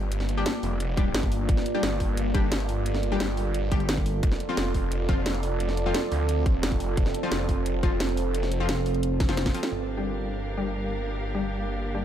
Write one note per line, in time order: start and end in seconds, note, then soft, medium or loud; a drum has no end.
0.00 0.45 G1 loud
0.00 4.19 A#3 medium
0.00 9.68 F4 medium
0.00 1.46 G4 medium
0.00 4.19 D5 medium
0.12 closed hi-hat loud
0.20 snare soft
0.29 closed hi-hat medium
0.37 0.45 G3 loud
0.37 0.45 D4 medium
0.37 0.45 G4 loud
0.46 snare loud
0.46 closed hi-hat loud
0.63 1.13 F1 medium
0.63 open hi-hat medium
0.80 closed hi-hat loud
0.97 1.02 G3 medium
0.97 1.02 D4 medium
0.97 1.02 G4 loud
0.97 kick loud
0.97 closed hi-hat medium
1.15 1.47 G1 medium
1.15 snare loud
1.15 closed hi-hat loud
1.23 kick medium
1.23 closed hi-hat soft
1.32 open hi-hat medium
1.49 1.65 G1 loud
1.49 9.68 A4 medium
1.49 kick loud
1.49 closed hi-hat loud
1.57 snare soft
1.66 closed hi-hat medium
1.74 1.82 G3 loud
1.74 1.82 D4 medium
1.74 1.82 G4 loud
1.83 3.19 G1 loud
1.83 snare loud
1.83 closed hi-hat medium
2.00 kick medium
2.00 open hi-hat medium
2.17 closed hi-hat loud
2.34 2.39 G3 loud
2.34 2.39 D4 medium
2.34 2.39 G4 loud
2.34 kick loud
2.34 closed hi-hat medium
2.52 snare loud
2.52 closed hi-hat loud
2.60 closed hi-hat soft
2.69 open hi-hat medium
2.86 closed hi-hat medium
2.94 snare soft
3.03 closed hi-hat medium
3.12 3.19 G3 loud
3.12 3.19 D4 medium
3.12 3.19 G4 loud
3.20 3.70 G1 loud
3.20 snare loud
3.20 closed hi-hat medium
3.37 open hi-hat medium
3.54 closed hi-hat medium
3.72 4.22 G1 medium
3.72 3.76 G3 medium
3.72 3.76 D4 medium
3.72 3.76 G4 loud
3.72 kick loud
3.72 closed hi-hat medium
3.80 closed hi-hat soft
3.89 snare loud
3.89 closed hi-hat medium
3.97 kick medium
3.97 closed hi-hat soft
4.06 open hi-hat medium
4.23 4.39 F1 loud
4.23 9.68 C4 medium
4.23 6.95 D5 loud
4.23 kick loud
4.23 closed hi-hat medium
4.32 snare soft
4.40 closed hi-hat medium
4.49 4.56 F3 loud
4.49 4.56 C4 medium
4.49 4.56 F4 loud
4.57 5.93 F1 loud
4.57 snare loud
4.57 closed hi-hat medium
4.74 kick medium
4.74 open hi-hat medium
4.92 closed hi-hat medium
5.09 5.14 F3 medium
5.09 5.14 C4 medium
5.09 5.14 F4 loud
5.09 kick loud
5.09 closed hi-hat medium
5.26 snare loud
5.26 closed hi-hat medium
5.34 closed hi-hat soft
5.43 open hi-hat medium
5.60 closed hi-hat medium
5.69 snare soft
5.77 closed hi-hat medium
5.86 5.94 F3 loud
5.86 5.94 C4 medium
5.86 5.94 F4 loud
5.94 snare loud
5.94 closed hi-hat medium
6.12 6.62 D2 loud
6.12 open hi-hat medium
6.29 closed hi-hat medium
6.46 kick loud
6.46 closed hi-hat medium
6.63 6.96 F1 loud
6.63 snare loud
6.63 closed hi-hat medium
6.72 kick medium
6.72 closed hi-hat soft
6.80 open hi-hat medium
6.97 7.13 F1 loud
6.97 9.69 C5 medium
6.97 kick loud
6.97 closed hi-hat medium
7.06 snare soft
7.14 closed hi-hat medium
7.23 7.31 F3 loud
7.23 7.31 C4 medium
7.23 7.31 F4 loud
7.32 8.67 F1 loud
7.32 snare loud
7.32 closed hi-hat medium
7.49 kick medium
7.49 open hi-hat medium
7.66 closed hi-hat medium
7.83 7.88 F3 medium
7.83 7.88 C4 medium
7.83 7.88 F4 loud
7.83 kick loud
7.83 closed hi-hat medium
8.00 snare loud
8.00 closed hi-hat medium
8.09 closed hi-hat soft
8.17 open hi-hat medium
8.34 closed hi-hat loud
8.43 snare soft
8.52 closed hi-hat medium
8.60 8.68 F3 loud
8.60 8.68 C4 medium
8.60 8.68 F4 loud
8.69 9.53 F1 medium
8.69 snare loud
8.69 closed hi-hat loud
8.86 open hi-hat medium
8.94 closed hi-hat soft
9.03 closed hi-hat loud
9.20 kick loud
9.20 snare medium
9.20 closed hi-hat medium
9.29 9.34 F3 medium
9.29 9.34 C4 medium
9.29 9.34 F4 medium
9.29 snare medium
9.29 closed hi-hat soft
9.37 snare medium
9.37 closed hi-hat medium
9.46 kick medium
9.46 snare medium
9.46 closed hi-hat soft
9.54 9.59 F3 medium
9.54 9.59 C4 medium
9.54 9.59 F4 medium
9.54 open hi-hat medium
9.63 snare medium
9.71 12.05 G1 medium
9.71 12.05 A#3 medium
9.71 12.05 D4 medium
9.71 12.05 F4 medium
9.71 12.05 G4 medium
9.71 12.05 D5 medium
9.80 12.05 G4 medium
9.80 12.05 A#4 medium
9.80 12.05 F5 medium
9.97 10.05 G3 medium
9.97 10.05 D4 medium
9.97 10.05 G4 loud
10.57 10.62 G3 medium
10.57 10.62 D4 medium
10.57 10.62 G4 loud
11.35 11.42 G3 medium
11.35 11.42 D4 medium
11.35 11.42 G4 loud
11.94 11.99 G3 medium
11.94 11.99 D4 medium
11.94 11.99 G4 loud